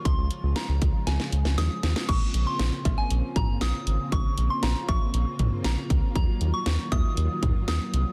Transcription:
<<
  \new Staff \with { instrumentName = "Synth bell" } { \time 4/4 \key bes \minor \tempo 4 = 118 c'''4 bes''4 aes''4 ees'''4 | des'''8. c'''4 aes''8. bes''8 ees'''4 | des'''8. c'''16 bes''8 des'''4. bes''4 | bes''8. des'''8. ees'''4 r8 ees'''4 | }
  \new Staff \with { instrumentName = "String machine" } { \clef bass \time 4/4 \key bes \minor << { f'1 | f'1~ | f'1~ | f'1 | } \\ { <des f aes>1 | <des bes c'>1~ | <des bes c'>1 | <ees ges>1 | } >> }
  \new Staff \with { instrumentName = "Analog synth bass" } { \clef bass \time 4/4 \key bes \minor des,16 des,16 r16 des,16 r16 des,16 des,16 r16 des,16 r16 des,16 des,16 ees,16 r16 ees,16 r16 | bes,,16 r16 bes,,16 r16 bes,,16 r16 bes,,16 r16 bes,,16 r16 bes,,16 r16 bes,,16 r16 aes,,16 r16 | bes,,16 r16 bes,,16 r16 bes,,16 r16 bes,,16 r16 bes,,16 r16 bes,,16 r16 bes,,16 r16 des,16 r16 | ees,16 r16 ees,16 r16 ees,16 r16 ees,16 r16 ees,16 r16 ees,16 r16 ees,16 r16 c,16 r16 | }
  \new DrumStaff \with { instrumentName = "Drums" } \drummode { \time 4/4 <hh bd>8 hh8 <hh sn>8 <hh bd>8 <hh sn>16 sn16 hh16 sn16 <hh sn>8 <hh sn>16 sn16 | <cymc hh bd>8 hh8 <hh sn>8 <cb hh bd>8 hh8 <hh bd toml>8 <hh sn>8 hh8 | <hh bd>8 hh8 <hh sn>8 <cb hh bd>8 hh8 <hh toml>8 <hh sn>8 <hh bd>8 | <hh bd>8 hh8 <hh sn>8 <cb hh bd>8 hh8 <hh bd toml>8 <hh sn>8 hh8 | }
>>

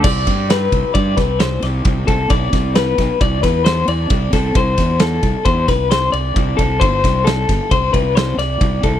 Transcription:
<<
  \new Staff \with { instrumentName = "Clean electric guitar" } { \time 5/4 \key c \lydian \tempo 4 = 133 d''4 b'4 d''8 b'8 c''8 d''4 a'8 | d''4 b'4 d''8 b'8 c''8 d''4 a'8 | c''4 a'4 c''8 b'8 c''8 d''4 a'8 | c''4 a'4 c''8 b'8 c''8 d''4 a'8 | }
  \new Staff \with { instrumentName = "Clean electric guitar" } { \time 5/4 \key c \lydian <g c' g'>1~ <g c' g'>4 | r1 r4 | r1 r4 | r1 r4 | }
  \new Staff \with { instrumentName = "Fingered electric bass" } { \clef bass \time 5/4 \key c \lydian c,8 g,4 c,16 r16 g,8 c,4 c,8 c,8 c,8 | b,,8 c,4 b,,16 r16 c,8 e,4 e,8 c,8 c,8 | c,8 e,4 c,16 r16 e,8 c,4 c,8 c,8 c,8 | g,,8 c,4 g,,16 r16 c,8 c,4 c,8 c,8 c,8 | }
  \new DrumStaff \with { instrumentName = "Drums" } \drummode { \time 5/4 <cymc bd>8 <bd cymr>8 <cymr sn>8 <bd cymr>8 <bd cymr>8 <bd cymr sn>8 <cymr sn>8 <cymr sn>8 <bd cymr sn>8 <bd cymr>8 | <bd cymr>8 <bd cymr sn>8 <cymr sn>8 <bd cymr sn>8 <bd cymr>8 <bd cymr sn>8 <cymr sn>8 cymr8 <bd cymr>8 <bd cymr sn>8 | <bd cymr>8 <bd cymr sn>8 <cymr sn>8 <bd cymr>8 <bd cymr>8 <bd cymr sn>8 <cymr sn>8 cymr8 <bd cymr>8 <bd cymr>8 | <bd cymr>8 <bd cymr sn>8 <cymr sn>8 <bd cymr sn>8 <bd cymr>8 <bd cymr>8 <cymr sn>8 <cymr sn>8 <bd cymr>8 <bd cymr>8 | }
>>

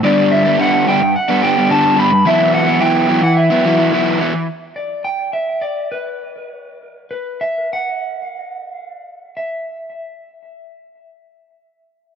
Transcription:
<<
  \new Staff \with { instrumentName = "Clean electric guitar" } { \time 4/4 \key e \minor \tempo 4 = 105 d''8 e''8 fis''8 g''8 fis''8 g''8 a''8 b''8 | e''8 fis''8 g''8. fis''16 e''4. r8 | r8 d''8 g''8 e''8 d''8 b'4 r8 | r8 b'8 e''8 fis''2 r8 |
e''1 | }
  \new Staff \with { instrumentName = "Overdriven electric guitar" } { \time 4/4 \key e \minor <g, d g b d'>8. <g b d'>16 <g, d g b d'>8 <d g b d'>8. <g b d'>16 <d g b d'>16 <g b d'>16 <g, d g b d'>8 <d g b d'>8 | <e fis b e'>8. <fis b e'>16 <e fis b e'>8 <e fis b e'>8. <fis b e'>16 <e fis b e'>16 <fis b e'>16 <e fis b e'>8 <e fis b e'>8 | r1 | r1 |
r1 | }
>>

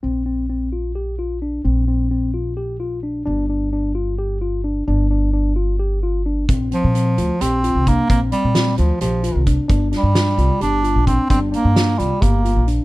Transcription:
<<
  \new Staff \with { instrumentName = "Tine electric piano" } { \time 7/8 \key bes \major \tempo 4 = 131 c'8 c'8 c'8 f'8 g'8 f'8 d'8 | c'8 c'8 c'8 f'8 g'8 f'8 d'8 | d'8 d'8 d'8 f'8 g'8 f'8 d'8 | d'8 d'8 d'8 f'8 g'8 f'8 d'8 |
c'8 c'8 c'8 f'8 g'8 f'8 d'8 | c'8 c'8 c'8 f'8 g'8 f'8 d'8 | d'8 d'8 d'8 f'8 g'8 f'8 d'8 | d'8 d'8 d'8 f'8 g'8 f'8 d'8 | }
  \new Staff \with { instrumentName = "Bass clarinet" } { \time 7/8 \key bes \major r2. r8 | r2. r8 | r2. r8 | r2. r8 |
r8 f4. c'4 bes8 | bes8 g4 f8 f4 r8 | r8 g4. d'4 c'8 | c'8 bes4 g8 bes4 r8 | }
  \new Staff \with { instrumentName = "Upright bass" } { \clef bass \time 7/8 \key bes \major bes,,2.~ bes,,8 | bes,,2.~ bes,,8 | g,,2.~ g,,8 | g,,2.~ g,,8 |
bes,,8 r16 bes,8. d,16 r16 bes,,8. c,8 r16 | bes,,8 r16 bes,8. d,16 r16 bes,,8. c,8 r16 | g,,8 r16 g,8. c,16 r16 g,,8. bes,,8 r16 | g,,8 r16 g,8. c,16 r16 g,,8. bes,,8 r16 | }
  \new DrumStaff \with { instrumentName = "Drums" } \drummode { \time 7/8 r4 r4 r4. | r4 r4 r4. | r4 r4 r4. | r4 r4 r4. |
<hh bd>8 hh8 hh8 hh8 hh8 hh8 <hh bd>8 | <hh bd>8 hh8 <hh sn>8 hh8 hh8 hh8 <hh bd>8 | <hh bd>8 <hh sn>8 <hh sn>8 hh8 hh8 hh8 <hh bd>8 | <hh bd>8 hh8 <hh sn>8 hh8 <hh bd>8 hh8 hh8 | }
>>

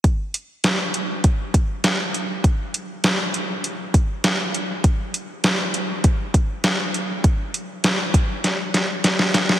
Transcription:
\new DrumStaff \with { instrumentName = "Drums" } \drummode { \time 4/4 \tempo 4 = 100 <hh bd>8 hh8 <hh sn>8 hh8 <hh bd>8 <hh bd>8 <hh sn>8 hh8 | <hh bd>8 hh8 <hh sn>8 hh8 hh8 <hh bd>8 <hh sn>8 hh8 | <hh bd>8 hh8 <hh sn>8 hh8 <hh bd>8 <hh bd>8 <hh sn>8 hh8 | <hh bd>8 hh8 <hh sn>8 <hh bd>8 <hh sn>8 <hh sn>8 <hh sn>16 sn16 <hh sn>16 sn16 | }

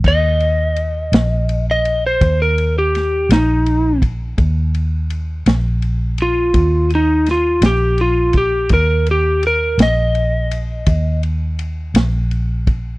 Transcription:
<<
  \new Staff \with { instrumentName = "Lead electric guitar" } { \time 12/8 \key ees \major \tempo 4. = 55 ees''2~ ees''16 ees''8 c''8 bes'8 g'8. ees'4 r8 | r2 r8 f'4 ees'8 f'8 g'8 f'8 g'8 | bes'8 g'8 bes'8 ees''2 r2 r8 | }
  \new Staff \with { instrumentName = "Fingered electric bass" } { \clef bass \time 12/8 \key ees \major ees,4. bes,,4. ees,4. bes,,4. | ees,4. bes,,4. ees,4. bes,,4. | ees,4. bes,,4. ees,4. bes,,4. | }
  \new DrumStaff \with { instrumentName = "Drums" } \drummode { \time 12/8 <cymc bd>8 cymr8 cymr8 <cymr sn>8 cymr8 cymr8 <bd cymr>8 cymr8 <cymr sn>8 <cymr sn>8 cymr8 <bd cymr>8 | <bd cymr>8 cymr8 cymr8 <cymr sn>8 cymr8 cymr8 <bd cymr>8 cymr8 <cymr sn>8 <cymr sn>8 cymr8 <bd cymr>8 | <bd cymr>8 cymr8 cymr8 <cymr sn>8 cymr8 cymr8 <bd cymr>8 cymr8 cymr8 <cymr sn>8 cymr8 <bd cymr>8 | }
>>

